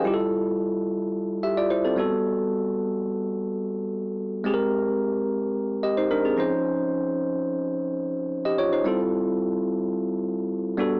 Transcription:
Already playing: D#5
0.04 G3 E4 F4 G4
0.14 A4
1.43 G4 E5
1.57 F4 D5
1.70 E4 C5
1.85 C4 A4
1.96 G3 B3 F#4 A4
4.44 G#3 C4 G4 G#4
4.54 A#4
5.83 G4 D#5
5.97 D#4 C5
6.11 D4 A#4
6.25 C4 G#4
6.37 F3 C#4 D#4 C5
8.45 G4 D#5
8.58 F4 C#5
8.73 D#4 C5
8.84 G3 C4 E4 F4 A4
10.77 G3 B3 D4 F#4 A4

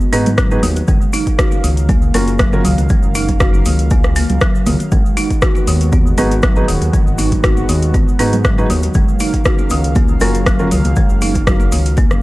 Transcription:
Already playing: D#3 G#3 B3 F#4
0.01 cabasa
0.12 G#2 B3 D#4 F#4 G#4 B4, open hi-hat, high conga, cabasa
0.26 closed hi-hat, high conga, low conga, cabasa
0.38 F#3, kick, cross-stick, closed hi-hat, cabasa
0.51 D#4 F#4 G#4 B4, cabasa
0.63 D#2 D#3, open hi-hat, high conga, low conga, cabasa
0.76 closed hi-hat, muted conga, cabasa
0.88 F#1 C#3 F#3 G#3 A#3 F5, kick, closed hi-hat, mid tom, cabasa
1.01 cabasa
1.13 D#4, open hi-hat, muted conga, cabasa
1.27 kick, closed hi-hat, cabasa
1.39 F#4, kick, cross-stick, closed hi-hat, cabasa
1.52 muted conga, cabasa
1.64 C#2 D#3, open hi-hat, high conga, cabasa
1.77 closed hi-hat, cabasa
1.89 A#3, kick, closed hi-hat, muted conga, high conga, low conga, cabasa
2.02 cabasa
2.14 F#1 A#3 C#4 F4 F#4 A#4, open hi-hat, high conga, low conga, cabasa
2.28 closed hi-hat, cabasa
2.39 F#3, kick, cross-stick, closed hi-hat, muted conga, high conga, cabasa
2.53 C#4 F4 F#4 A#4, mid tom, cabasa
2.64 C#2 D#3, open hi-hat, low conga, cabasa
2.78 C#2, closed hi-hat, muted conga, cabasa
2.89 G#3, kick, closed hi-hat, mid tom, cabasa
3.03 F#1, cabasa
3.15 D#4, open hi-hat, muted conga, cabasa
3.28 kick, closed hi-hat, low conga, cabasa
3.40 F#4, kick, cross-stick, closed hi-hat, cabasa
3.54 muted conga, cabasa
3.65 C#2 D#3, open hi-hat, high conga, cabasa
3.79 closed hi-hat, cabasa
3.90 C#2 A#3, kick, closed hi-hat, muted conga, high conga, cabasa
4.03 cross-stick, cabasa
4.16 A#3, open hi-hat, high conga, cabasa
4.29 C#2, closed hi-hat, high conga, low conga, cabasa
4.41 F#3, kick, cross-stick, closed hi-hat, muted conga, cabasa
4.55 cabasa
4.66 C#2 D#3, open hi-hat, mid tom, high conga, low conga, cabasa
4.80 closed hi-hat, muted conga, cabasa
4.92 G#1 D#3 G#3 B3 F#4, kick, closed hi-hat, mid tom, cabasa
5.06 cabasa
5.17 D#4, open hi-hat, muted conga, cabasa
5.30 kick, closed hi-hat, cabasa
5.42 F#4, kick, cross-stick, closed hi-hat, cabasa
5.55 muted conga, cabasa
5.67 D#2 D#3, open hi-hat, high conga, cabasa
5.81 closed hi-hat, cabasa
5.92 B3, kick, closed hi-hat, muted conga, high conga, low conga, cabasa
6.07 cabasa
6.17 G#1 B3 D#4 F#4 G#4 B4, open hi-hat, high conga, low conga, cabasa
6.31 closed hi-hat, cabasa
6.42 F#3, kick, cross-stick, closed hi-hat, muted conga, high conga, cabasa
6.56 D#4 F#4 G#4 B4, mid tom, cabasa
6.68 D#1 D#3, open hi-hat, low conga, cabasa
6.81 D#2, closed hi-hat, muted conga, cabasa
6.93 G#3, kick, closed hi-hat, mid tom, cabasa
7.07 G#1, cabasa
7.18 D#4, open hi-hat, muted conga, cabasa
7.32 kick, closed hi-hat, low conga, cabasa
7.43 F#4, kick, cross-stick, closed hi-hat, cabasa
7.57 muted conga, cabasa
7.69 D#2 D#3, open hi-hat, high conga, cabasa
7.82 closed hi-hat, cabasa
7.94 G#1 B3, kick, closed hi-hat, muted conga, high conga, cabasa
8.08 cabasa
8.19 G#2 B3 D#4 F#4 G#4 B4, open hi-hat, high conga, cabasa
8.33 closed hi-hat, high conga, low conga, cabasa
8.44 F#3, kick, cross-stick, closed hi-hat, muted conga, cabasa
8.58 D#4 F#4 G#4 B4, cabasa
8.70 D#2 D#3, open hi-hat, high conga, low conga, cabasa
8.82 closed hi-hat, muted conga, cabasa
8.94 F#1 C#3 F#3 G#3 A#3 F5, kick, closed hi-hat, mid tom, cabasa
9.08 cabasa
9.19 D#4, open hi-hat, muted conga, cabasa
9.33 kick, closed hi-hat, cabasa
9.45 F#4, kick, cross-stick, closed hi-hat, cabasa
9.58 muted conga, cabasa
9.70 C#2 D#3, open hi-hat, high conga, cabasa
9.84 closed hi-hat, cabasa
9.95 A#3, kick, closed hi-hat, muted conga, high conga, low conga, cabasa
10.08 cabasa
10.20 F#1 A#3 C#4 F4 F#4 A#4, open hi-hat, high conga, low conga, cabasa
10.35 closed hi-hat, cabasa
10.46 F#3, kick, cross-stick, closed hi-hat, muted conga, high conga, cabasa
10.59 C#4 F4 F#4 A#4, mid tom, cabasa
10.71 C#2 D#3, open hi-hat, low conga, cabasa
10.84 C#2, closed hi-hat, muted conga, cabasa
10.96 G#3, kick, closed hi-hat, mid tom, cabasa
11.09 F#1, cabasa
11.21 D#4, open hi-hat, muted conga, cabasa
11.35 kick, closed hi-hat, low conga, cabasa
11.47 F#4, kick, cross-stick, closed hi-hat, low conga, cabasa
11.60 muted conga, cabasa
11.72 C#2 D#3, open hi-hat, high conga, cabasa
11.85 closed hi-hat, cabasa
11.97 A#3, kick, closed hi-hat, muted conga, high conga, cabasa
12.11 F#1, cross-stick, cabasa

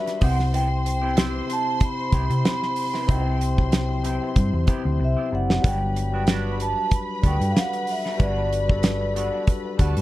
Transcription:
Already playing: G3 D4 F#4 B4 E5 B5
0.06 muted clean electric guitar stroke, snare, closed hi-hat
0.20 C2 C3 B3 C4 E4 G4 C5 F#5 C6, kick, open hi-hat
0.39 snare
0.53 B3 E4 G4 G5, closed hi-hat
0.70 muted clean electric guitar stroke
0.85 muted clean electric guitar stroke, closed hi-hat
1.02 C3 B3 C4 E4 G4 C5
1.16 B3 E4 G4, snare, closed hi-hat
1.48 C3 C4 E4 C5, muted clean electric guitar stroke, closed hi-hat
1.53 A5
1.66 muted clean electric guitar stroke
1.80 muted clean electric guitar stroke, kick, closed hi-hat
1.85 B5
2.12 C2 C3 B3 C4 E4 G4 C5, kick, closed hi-hat
2.30 C3, muted clean electric guitar stroke, closed hi-hat
2.44 B5, muted clean electric guitar stroke, snare, closed hi-hat
2.62 muted clean electric guitar stroke, snare
2.76 open hi-hat
2.93 B3 E4 G4, snare
3.07 C2 C3 A#3 C4 D#4 E4 F#4 C5, kick, closed hi-hat
3.12 G5
3.21 B3 E4 G4
3.41 closed hi-hat
3.55 C3 F#3 C4 E4, muted clean electric guitar stroke, kick
3.72 muted clean electric guitar stroke, snare, closed hi-hat
3.89 muted clean electric guitar stroke
4.02 C3 B3 C4 E4 G4 C5, closed hi-hat
4.21 B3 E4 G4
4.36 G2, muted clean electric guitar stroke, kick, closed hi-hat
4.53 E2, muted clean electric guitar stroke
4.66 C3 B3 C4 E4 G4, kick, closed hi-hat
4.70 C5
4.85 D2
4.99 C2, muted clean electric guitar stroke
5.04 E5
5.17 B3 E4 G4
5.30 F#1 C3 C4 E4 D5, muted clean electric guitar stroke
5.35 F#5
5.49 muted clean electric guitar stroke, snare
5.62 G1 F#3 G3 B3 D4 F#4 B4 B5, kick, closed hi-hat
5.67 G5
5.82 muted clean electric guitar stroke
5.96 muted clean electric guitar stroke, closed hi-hat
6.12 G3 B3 D4 F#4 B4
6.27 B3 D4 F#4, snare, closed hi-hat
6.58 G3 D4 F#4, muted clean electric guitar stroke, closed hi-hat
6.62 B4 A5
6.77 muted clean electric guitar stroke
6.91 muted clean electric guitar stroke, kick, closed hi-hat
6.95 B5
7.22 D2 G3 B3 D4 F#4 A4, kick, closed hi-hat
7.27 G5
7.32 B4
7.40 G2, muted clean electric guitar stroke, closed hi-hat
7.51 F5
7.56 F#5, muted clean electric guitar stroke, snare, closed hi-hat
7.73 muted clean electric guitar stroke, closed hi-hat
7.87 open hi-hat
7.91 E5
8.05 B3 D4 F#4, snare
8.17 G1 G3 B3 D4 F#4, kick, closed hi-hat
8.21 F#4 B4 D5
8.53 closed hi-hat
8.67 G3 D4 F#4 A4, muted clean electric guitar stroke, kick
8.83 muted clean electric guitar stroke, snare, closed hi-hat
9.01 muted clean electric guitar stroke
9.14 G3 B3 D4 F#4, closed hi-hat
9.18 A4
9.25 B4
9.33 B3 D4 F#4
9.47 muted clean electric guitar stroke, kick, closed hi-hat
9.66 muted clean electric guitar stroke
9.78 D2 G3 B3 D4 F#4 A4 B4 A5, kick, closed hi-hat
9.97 G2, closed hi-hat

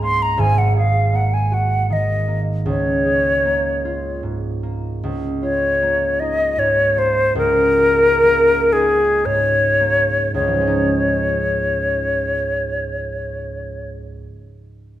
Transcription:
Already playing: C#2 G#2 G#3 D#4 G#4
0.02 A#3 C6
0.22 A#5
0.38 G#1 G#2 G#5
0.58 F#5
0.76 G#4 F5
1.14 A#3 F#5
1.34 G#5
1.52 F#4 F#5
1.90 D#3 D#5
2.28 A#3
2.66 C#2 C#5
3.05 G#4
3.45 A#3
3.85 F4
4.23 G#2
4.63 A#3
5.03 C#2
5.43 F4 C#5
5.82 A#3
6.20 D#4 D#5
6.57 G#2 C#5
6.96 A#3 C5
7.35 C#2 A#4
7.79 F#4
8.23 A#3
8.73 D#4 G#4
9.25 G#2 C#5
9.80 A#3
10.34 C#2 C#5
10.41 G#2
10.48 F3
10.54 G#3
10.61 C#4
10.67 D#4

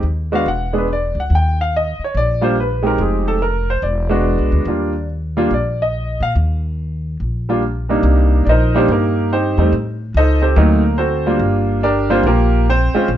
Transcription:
0.03 D#2
0.32 G#3 B3 D4 F#4 F5
0.46 E1 F#5
0.73 G#3 B3 D4 G#4
0.78 B4
0.93 D5
1.15 C#2
1.20 F#5
1.30 D#2
1.35 G5
1.61 F5
1.76 D#5
1.99 muted upright bass stroke
2.04 C#5
2.15 A#1 D5
2.41 G3 A#3 D4 F4 C5
2.60 B4
2.82 G#3 C4 D#4 G4
2.87 A#4
2.98 F1 G#4
3.28 A4
3.42 A#4
3.70 C5
3.82 E1 D5
4.09 G#3 B3 D4 F#4
4.38 B1
4.52 D2
4.65 D#2 G3 A#3 D4 F4
5.37 G3 A#3 D4 F4
5.50 A#1 D5
5.82 D#5
6.20 A#2 F5
6.35 D#2
7.20 A#1
7.49 G3 A#3 D4 F4
7.89 C3 G3 A#3 D4 D#4
8.03 C2
8.45 A#1 C5 D5 D#5
8.49 D#4 A#4
8.75 G3 A#3 C4 D4 D#4 G4 C5
8.88 G2 A#3 D#4 G4 A#4
9.32 C4 D#4 G4 C5
9.57 E2 G3 A3 C4 D#4
9.72 A2
10.14 C#2 D#4 A4 C5 D#5
10.42 C4 G4 A4 C5
10.56 D2 F#3 A3 A#3 C4 D#4 A#4
10.98 C4 F#4 A4 C5
11.26 G3 A#3 D4 F4
11.39 G1
11.83 D4 G4 A#4 D5
12.10 G3 A#3 C4 D4 F4 C5
12.23 A#1 F4 A#4
12.27 A#3 G4
12.69 C4 C5
12.94 G#3 C4 C#4 F4, muted upright bass stroke
13.08 A#1

